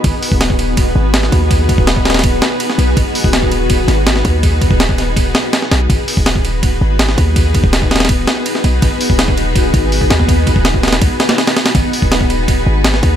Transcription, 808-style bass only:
\new Staff \with { instrumentName = "808-style bass" } { \clef bass \time 4/4 \key gis \minor \tempo 4 = 164 gis,,16 r8 dis,,4.~ dis,,16 gis,,4 dis,8~ | dis,8. dis,,4.~ dis,,16 r4 b,,8 | gis,,16 r8 dis,,4.~ dis,,16 gis,,4 dis,8~ | dis,8. dis,,4.~ dis,,16 r4 b,,8 |
gis,,16 r8 dis,,4.~ dis,,16 gis,,4 dis,8~ | dis,8. dis,,4.~ dis,,16 r4 b,,8 | gis,,16 r8 dis,,4.~ dis,,16 gis,,4 dis,8~ | dis,8. dis,,4~ dis,,16 cis,16 r4. r16 |
gis,,16 r8 dis,,4.~ dis,,16 gis,,4 dis,8 | }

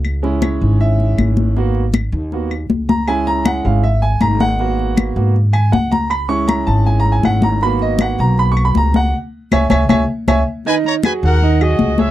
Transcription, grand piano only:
<<
  \new Staff \with { instrumentName = "Grand piano" } { \time 4/4 \key gis \minor \tempo 4 = 158 r4 cis''4 e''4 r4 | r2. r8 ais''8 | gis''8 ais''8 fis''8 eis''8 e''8 gis''8 ais''8 fis''8~ | fis''4 r4. gis''8 fis''8 ais''8 |
b''8 cis'''8 ais''8 a''8 \tuplet 3/2 { gis''8 ais''8 gis''8 } fis''8 ais''8 | b''8 dis''8 fis''8 ais''8 \tuplet 3/2 { b''8 cis'''8 b''8 } ais''8 fis''8 | r4 <cis'' e'' gis''>8 <cis'' e'' gis''>8 <cis'' e'' gis''>8 r8 <cis'' e'' gis''>8 r8 | <dis dis' dis''>4 <fis fis' gis'>4 <dis dis' dis''>8 <fis fis' gis'>4 <gis gis' cis''>8 | }
  \new Staff \with { instrumentName = "Grand piano" } { \time 4/4 \key gis \minor r8 <gis cis' e'>2.~ <gis cis' e'>8 | <ais b fis'>8 r4. <ais b fis'>8 r4. | <gis cis' e'>4. <gis cis' e'>8 r2 | <ais b fis'>4. <ais b fis'>8 r2 |
r8 <gis cis' e'>2.~ <gis cis' e'>8 | <ais b fis'>1 | r1 | r1 | }
>>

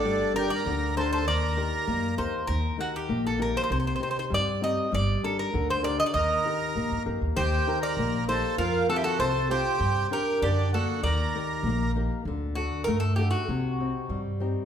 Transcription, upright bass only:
\new Staff \with { instrumentName = "Upright bass" } { \clef bass \time 2/4 \tempo 4 = 98 g,,4 d,4 | ees,4 fis,8 ees,8 | ees,8 r8 bes,,4 | c,8 r8 g,4 |
g,,8 r8 d,4 | ees,8 r8 a,16 g,16 fis,16 ees,16 | ees,8 r8 bes,,4 | f,8 r8 c,4 |
g,8 r8 fis,4 | ees,8 r8 bes,,4 | d,4 g,4 | c,4 g,4 | }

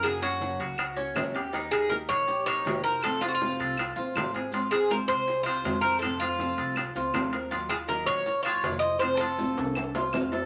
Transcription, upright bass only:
\new Staff \with { instrumentName = "Upright bass" } { \clef bass \time 4/4 \key f \phrygian \tempo 4 = 160 ges,4. des,4. ees,4~ | ees,4. bes,,4. f,,4~ | f,,4. c,4 bes,,8 aes,,4~ | aes,,4. c,4. f,4~ |
f,4. c,4 des,8 ees,4~ | ees,4. bes,,4. f,,4~ | f,,4. c,4. f,4 | }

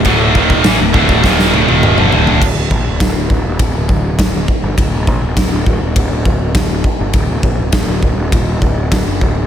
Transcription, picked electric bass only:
\new Staff \with { instrumentName = "Picked electric bass" } { \clef bass \time 4/4 \tempo 4 = 102 d,,8 ees,,8 a,,16 d,,16 d,,8 ees,,8 d,,16 ees,,8 g,,16 d,,8 | d,,16 d,,16 bes,,16 d,,16 d,,16 d,,16 d,,16 ees,,16 d,,16 d,,16 d,,8 d,,16 d,,16 r16 g,,16 | d,,16 d,,16 bes,,16 d,,16 d,,16 d,,16 d,,16 ees,,16 d,,16 d,,16 d,,8 d,,16 d,,16 r16 g,,16 | d,,16 d,,16 bes,,16 d,,16 d,,16 d,,16 d,,16 ees,,16 ees,,8 d,,8. fis,,16 d,,8 | }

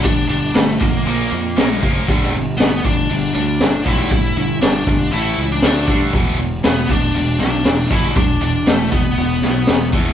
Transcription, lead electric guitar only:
\new Staff \with { instrumentName = "Lead electric guitar" } { \time 4/4 \key e \minor \tempo 4 = 118 d'8 d'8 a8 ais2 r8 | r4 b8 d'4 d'4 e'8~ | e'4 d'4 e'8. d'16 d'8. r16 | r4 b8 d'4 d'4 e'8 |
d'8 d'8 a8 b2 r8 | }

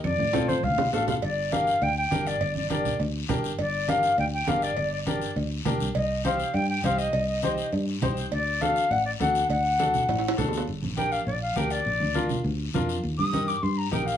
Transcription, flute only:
\new Staff \with { instrumentName = "Flute" } { \time 4/4 \key d \phrygian \tempo 4 = 203 d''4. c''8 f''4 f''8 f''8 | \key g \minor d''4 f''4 g''8 g''4 d''8~ | d''8 d''8 d''4 r2 | d''4 f''4 g''8 g''8 f''8 d''8~ |
d''8 d''8 d''4 r2 | ees''4 f''4 g''8 g''8 f''8 ees''8~ | ees''8 ees''8 ees''4 r2 | d''4 f''4 fis''8 d''8 fis''4 |
fis''2. r4 | r4 g''8 f''8 d''8 f''8 g''8 d''8~ | d''4. r2 r8 | r8 ees'''4 d'''8 c'''8 bes''8 g''8 f''8 | }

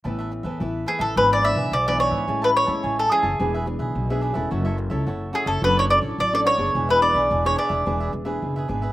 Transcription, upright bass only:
\new Staff \with { instrumentName = "Upright bass" } { \clef bass \time 4/4 \key a \major \tempo 4 = 108 a,,8. e,16 a,,8 r16 a,,16 gis,,8. b,,16 b,,8. gis,16 | a,,8. e,16 a,,8 r16 fis,,16 e,,8. b,,16 b,,8. e,,16 | fis,,8. cis,16 fis,,8 r16 fis,,16 fis,,8. a,,16 a,,8. fis,,16 | e,,8. b,,16 e,,8 r16 e,,16 e,,8 e,,8 fis,,8 gis,,8 | }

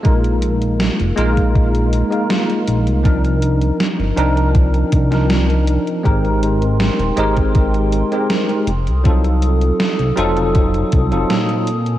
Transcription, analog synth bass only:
\new Staff \with { instrumentName = "Analog synth bass" } { \clef bass \time 4/4 \key f \dorian \tempo 4 = 80 bes,,4~ bes,,16 f,,16 bes,,4~ bes,,16 r8. bes,,16 c,16~ | c,4 r16 g,,16 c,4 c,4~ c,16 r16 | aes,,4~ aes,,16 ees,,16 aes,,4~ aes,,16 r8. f,,16 c,16~ | c,4 r16 c,16 f,,4 c,16 f,,16 bes,4 | }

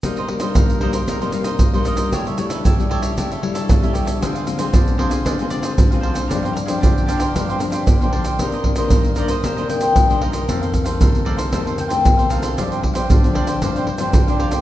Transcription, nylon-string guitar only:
\new Staff \with { instrumentName = "Nylon-string guitar" } { \time 4/4 \key c \minor \tempo 4 = 115 << { <g bes ees'>16 r16 <g bes ees'>16 <g bes ees'>8. <g bes ees'>16 r16 <g bes ees'>16 <g bes ees'>16 <g bes ees'>8 r16 <g bes ees'>8. | <g a e'>8 <g a e'>8 r16 <g a e'>8. <g a e'>16 r16 <g a e'>8. <g a e'>8. | <aes c' f'>16 r16 <aes c' f'>16 <aes c' f'>8. <aes c' f'>8. <aes c' f'>16 <aes c' f'>8. <aes c' f'>8. | <f c' d'>8 r16 <f c' d'>8. <f c' d'>8 <f c' d'>16 <f c' d'>16 <f c' d'>8 r16 <f c' d'>8. |
<ees bes d'>8 <ees bes d'>16 <ees bes d'>8. <ees bes d'>16 r16 <ees bes d'>16 <ees bes d'>16 <ees bes d'>8 r16 <ees bes d'>8. | <ees a c'>8. <ees a c'>8. <ees a c'>16 r16 <ees a c'>8. <ees a c'>8. <ees a c'>8 | <f c' d'>8 r16 <f c' d'>8 <f c' d'>8. <f c' d'>8 r16 <f c' d'>8 <f c' d'>8 <ees bes d'>16 | } \\ { c4 g,4 c4 g,4 | cis4 cis4 cis4 cis4 | d4 d4 d4 d4 | g,4 d4 g,4 d4 |
c4 g,4 c4 g,4 | f,4 c4 f,4 c4 | g,4 d4 g,4 d4 | } >> }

